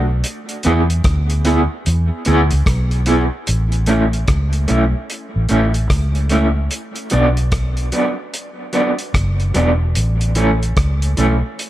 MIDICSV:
0, 0, Header, 1, 4, 480
1, 0, Start_track
1, 0, Key_signature, 3, "major"
1, 0, Tempo, 809717
1, 139, Time_signature, 4, 2, 24, 8
1, 6934, End_track
2, 0, Start_track
2, 0, Title_t, "Clean electric guitar"
2, 0, Program_c, 0, 27
2, 383, Note_on_c, 0, 59, 86
2, 391, Note_on_c, 0, 64, 94
2, 394, Note_on_c, 0, 68, 98
2, 471, Note_off_c, 0, 59, 0
2, 475, Note_off_c, 0, 64, 0
2, 476, Note_off_c, 0, 68, 0
2, 860, Note_on_c, 0, 59, 78
2, 865, Note_on_c, 0, 64, 76
2, 871, Note_on_c, 0, 68, 88
2, 949, Note_off_c, 0, 59, 0
2, 951, Note_off_c, 0, 64, 0
2, 954, Note_off_c, 0, 68, 0
2, 1340, Note_on_c, 0, 59, 84
2, 1347, Note_on_c, 0, 64, 89
2, 1351, Note_on_c, 0, 68, 100
2, 1429, Note_off_c, 0, 59, 0
2, 1433, Note_off_c, 0, 64, 0
2, 1434, Note_off_c, 0, 68, 0
2, 1817, Note_on_c, 0, 59, 78
2, 1821, Note_on_c, 0, 64, 86
2, 1827, Note_on_c, 0, 68, 96
2, 1907, Note_off_c, 0, 59, 0
2, 1909, Note_off_c, 0, 64, 0
2, 1912, Note_off_c, 0, 68, 0
2, 2297, Note_on_c, 0, 57, 81
2, 2302, Note_on_c, 0, 61, 80
2, 2308, Note_on_c, 0, 64, 85
2, 2387, Note_off_c, 0, 57, 0
2, 2390, Note_off_c, 0, 61, 0
2, 2393, Note_off_c, 0, 64, 0
2, 2774, Note_on_c, 0, 57, 72
2, 2780, Note_on_c, 0, 61, 74
2, 2786, Note_on_c, 0, 64, 77
2, 2866, Note_off_c, 0, 57, 0
2, 2869, Note_off_c, 0, 61, 0
2, 2872, Note_off_c, 0, 64, 0
2, 3256, Note_on_c, 0, 57, 86
2, 3261, Note_on_c, 0, 61, 84
2, 3267, Note_on_c, 0, 64, 83
2, 3347, Note_off_c, 0, 57, 0
2, 3350, Note_off_c, 0, 61, 0
2, 3353, Note_off_c, 0, 64, 0
2, 3737, Note_on_c, 0, 57, 77
2, 3744, Note_on_c, 0, 61, 70
2, 3749, Note_on_c, 0, 64, 86
2, 3828, Note_off_c, 0, 57, 0
2, 3832, Note_off_c, 0, 61, 0
2, 3834, Note_off_c, 0, 64, 0
2, 4216, Note_on_c, 0, 54, 78
2, 4221, Note_on_c, 0, 59, 79
2, 4228, Note_on_c, 0, 62, 91
2, 4308, Note_off_c, 0, 54, 0
2, 4310, Note_off_c, 0, 59, 0
2, 4314, Note_off_c, 0, 62, 0
2, 4697, Note_on_c, 0, 54, 73
2, 4702, Note_on_c, 0, 59, 76
2, 4707, Note_on_c, 0, 62, 79
2, 4788, Note_off_c, 0, 54, 0
2, 4791, Note_off_c, 0, 59, 0
2, 4793, Note_off_c, 0, 62, 0
2, 5174, Note_on_c, 0, 54, 76
2, 5180, Note_on_c, 0, 59, 75
2, 5186, Note_on_c, 0, 62, 83
2, 5267, Note_off_c, 0, 54, 0
2, 5270, Note_off_c, 0, 59, 0
2, 5273, Note_off_c, 0, 62, 0
2, 5657, Note_on_c, 0, 54, 80
2, 5664, Note_on_c, 0, 59, 84
2, 5668, Note_on_c, 0, 62, 80
2, 5748, Note_off_c, 0, 54, 0
2, 5752, Note_off_c, 0, 59, 0
2, 5754, Note_off_c, 0, 62, 0
2, 6140, Note_on_c, 0, 52, 71
2, 6145, Note_on_c, 0, 57, 81
2, 6150, Note_on_c, 0, 61, 92
2, 6230, Note_off_c, 0, 52, 0
2, 6233, Note_off_c, 0, 57, 0
2, 6235, Note_off_c, 0, 61, 0
2, 6622, Note_on_c, 0, 52, 81
2, 6626, Note_on_c, 0, 57, 80
2, 6631, Note_on_c, 0, 61, 84
2, 6711, Note_off_c, 0, 52, 0
2, 6713, Note_off_c, 0, 57, 0
2, 6716, Note_off_c, 0, 61, 0
2, 6934, End_track
3, 0, Start_track
3, 0, Title_t, "Fingered electric bass"
3, 0, Program_c, 1, 33
3, 0, Note_on_c, 1, 35, 82
3, 130, Note_off_c, 1, 35, 0
3, 391, Note_on_c, 1, 40, 107
3, 609, Note_off_c, 1, 40, 0
3, 623, Note_on_c, 1, 38, 86
3, 983, Note_off_c, 1, 38, 0
3, 1107, Note_on_c, 1, 40, 89
3, 1240, Note_off_c, 1, 40, 0
3, 1348, Note_on_c, 1, 38, 86
3, 1480, Note_off_c, 1, 38, 0
3, 1495, Note_on_c, 1, 37, 94
3, 1578, Note_off_c, 1, 37, 0
3, 1581, Note_on_c, 1, 35, 88
3, 1942, Note_off_c, 1, 35, 0
3, 2067, Note_on_c, 1, 33, 92
3, 2519, Note_off_c, 1, 33, 0
3, 2542, Note_on_c, 1, 37, 83
3, 2765, Note_off_c, 1, 37, 0
3, 2789, Note_on_c, 1, 35, 74
3, 2921, Note_off_c, 1, 35, 0
3, 3176, Note_on_c, 1, 33, 69
3, 3259, Note_off_c, 1, 33, 0
3, 3267, Note_on_c, 1, 33, 81
3, 3488, Note_off_c, 1, 33, 0
3, 3502, Note_on_c, 1, 37, 87
3, 3957, Note_off_c, 1, 37, 0
3, 4229, Note_on_c, 1, 35, 95
3, 4681, Note_off_c, 1, 35, 0
3, 5423, Note_on_c, 1, 30, 87
3, 5646, Note_off_c, 1, 30, 0
3, 5666, Note_on_c, 1, 28, 83
3, 5888, Note_off_c, 1, 28, 0
3, 5909, Note_on_c, 1, 33, 96
3, 6361, Note_off_c, 1, 33, 0
3, 6387, Note_on_c, 1, 37, 85
3, 6608, Note_off_c, 1, 37, 0
3, 6629, Note_on_c, 1, 35, 78
3, 6762, Note_off_c, 1, 35, 0
3, 6934, End_track
4, 0, Start_track
4, 0, Title_t, "Drums"
4, 141, Note_on_c, 9, 42, 98
4, 200, Note_off_c, 9, 42, 0
4, 289, Note_on_c, 9, 42, 52
4, 348, Note_off_c, 9, 42, 0
4, 375, Note_on_c, 9, 42, 69
4, 434, Note_off_c, 9, 42, 0
4, 533, Note_on_c, 9, 42, 51
4, 593, Note_off_c, 9, 42, 0
4, 618, Note_on_c, 9, 42, 92
4, 620, Note_on_c, 9, 36, 114
4, 622, Note_on_c, 9, 37, 117
4, 677, Note_off_c, 9, 42, 0
4, 679, Note_off_c, 9, 36, 0
4, 682, Note_off_c, 9, 37, 0
4, 769, Note_on_c, 9, 42, 59
4, 828, Note_off_c, 9, 42, 0
4, 858, Note_on_c, 9, 42, 73
4, 917, Note_off_c, 9, 42, 0
4, 1103, Note_on_c, 9, 42, 91
4, 1162, Note_off_c, 9, 42, 0
4, 1334, Note_on_c, 9, 42, 63
4, 1393, Note_off_c, 9, 42, 0
4, 1485, Note_on_c, 9, 42, 55
4, 1545, Note_off_c, 9, 42, 0
4, 1578, Note_on_c, 9, 36, 100
4, 1581, Note_on_c, 9, 37, 113
4, 1582, Note_on_c, 9, 42, 85
4, 1638, Note_off_c, 9, 36, 0
4, 1641, Note_off_c, 9, 37, 0
4, 1641, Note_off_c, 9, 42, 0
4, 1726, Note_on_c, 9, 42, 44
4, 1786, Note_off_c, 9, 42, 0
4, 1813, Note_on_c, 9, 42, 73
4, 1872, Note_off_c, 9, 42, 0
4, 2057, Note_on_c, 9, 42, 93
4, 2117, Note_off_c, 9, 42, 0
4, 2205, Note_on_c, 9, 42, 44
4, 2264, Note_off_c, 9, 42, 0
4, 2290, Note_on_c, 9, 42, 61
4, 2350, Note_off_c, 9, 42, 0
4, 2450, Note_on_c, 9, 42, 48
4, 2509, Note_off_c, 9, 42, 0
4, 2535, Note_on_c, 9, 42, 81
4, 2538, Note_on_c, 9, 36, 100
4, 2539, Note_on_c, 9, 37, 101
4, 2594, Note_off_c, 9, 42, 0
4, 2597, Note_off_c, 9, 36, 0
4, 2598, Note_off_c, 9, 37, 0
4, 2684, Note_on_c, 9, 42, 50
4, 2743, Note_off_c, 9, 42, 0
4, 2774, Note_on_c, 9, 42, 65
4, 2833, Note_off_c, 9, 42, 0
4, 3022, Note_on_c, 9, 42, 79
4, 3081, Note_off_c, 9, 42, 0
4, 3252, Note_on_c, 9, 42, 55
4, 3312, Note_off_c, 9, 42, 0
4, 3404, Note_on_c, 9, 42, 49
4, 3464, Note_off_c, 9, 42, 0
4, 3497, Note_on_c, 9, 36, 91
4, 3498, Note_on_c, 9, 37, 98
4, 3498, Note_on_c, 9, 42, 77
4, 3556, Note_off_c, 9, 36, 0
4, 3557, Note_off_c, 9, 37, 0
4, 3558, Note_off_c, 9, 42, 0
4, 3646, Note_on_c, 9, 42, 40
4, 3705, Note_off_c, 9, 42, 0
4, 3732, Note_on_c, 9, 42, 71
4, 3791, Note_off_c, 9, 42, 0
4, 3976, Note_on_c, 9, 42, 92
4, 4035, Note_off_c, 9, 42, 0
4, 4123, Note_on_c, 9, 42, 45
4, 4183, Note_off_c, 9, 42, 0
4, 4208, Note_on_c, 9, 42, 64
4, 4267, Note_off_c, 9, 42, 0
4, 4369, Note_on_c, 9, 42, 49
4, 4428, Note_off_c, 9, 42, 0
4, 4457, Note_on_c, 9, 42, 85
4, 4458, Note_on_c, 9, 36, 103
4, 4461, Note_on_c, 9, 37, 106
4, 4516, Note_off_c, 9, 42, 0
4, 4518, Note_off_c, 9, 36, 0
4, 4520, Note_off_c, 9, 37, 0
4, 4605, Note_on_c, 9, 42, 49
4, 4665, Note_off_c, 9, 42, 0
4, 4696, Note_on_c, 9, 42, 64
4, 4755, Note_off_c, 9, 42, 0
4, 4942, Note_on_c, 9, 42, 80
4, 5001, Note_off_c, 9, 42, 0
4, 5174, Note_on_c, 9, 42, 53
4, 5233, Note_off_c, 9, 42, 0
4, 5327, Note_on_c, 9, 42, 47
4, 5386, Note_off_c, 9, 42, 0
4, 5420, Note_on_c, 9, 36, 87
4, 5421, Note_on_c, 9, 37, 106
4, 5422, Note_on_c, 9, 42, 77
4, 5479, Note_off_c, 9, 36, 0
4, 5481, Note_off_c, 9, 37, 0
4, 5481, Note_off_c, 9, 42, 0
4, 5571, Note_on_c, 9, 42, 42
4, 5630, Note_off_c, 9, 42, 0
4, 5659, Note_on_c, 9, 42, 65
4, 5718, Note_off_c, 9, 42, 0
4, 5900, Note_on_c, 9, 42, 89
4, 5960, Note_off_c, 9, 42, 0
4, 6052, Note_on_c, 9, 42, 50
4, 6111, Note_off_c, 9, 42, 0
4, 6136, Note_on_c, 9, 42, 65
4, 6196, Note_off_c, 9, 42, 0
4, 6300, Note_on_c, 9, 42, 49
4, 6359, Note_off_c, 9, 42, 0
4, 6382, Note_on_c, 9, 42, 81
4, 6383, Note_on_c, 9, 36, 98
4, 6387, Note_on_c, 9, 37, 105
4, 6442, Note_off_c, 9, 36, 0
4, 6442, Note_off_c, 9, 42, 0
4, 6446, Note_off_c, 9, 37, 0
4, 6534, Note_on_c, 9, 42, 50
4, 6593, Note_off_c, 9, 42, 0
4, 6623, Note_on_c, 9, 42, 65
4, 6682, Note_off_c, 9, 42, 0
4, 6871, Note_on_c, 9, 42, 77
4, 6931, Note_off_c, 9, 42, 0
4, 6934, End_track
0, 0, End_of_file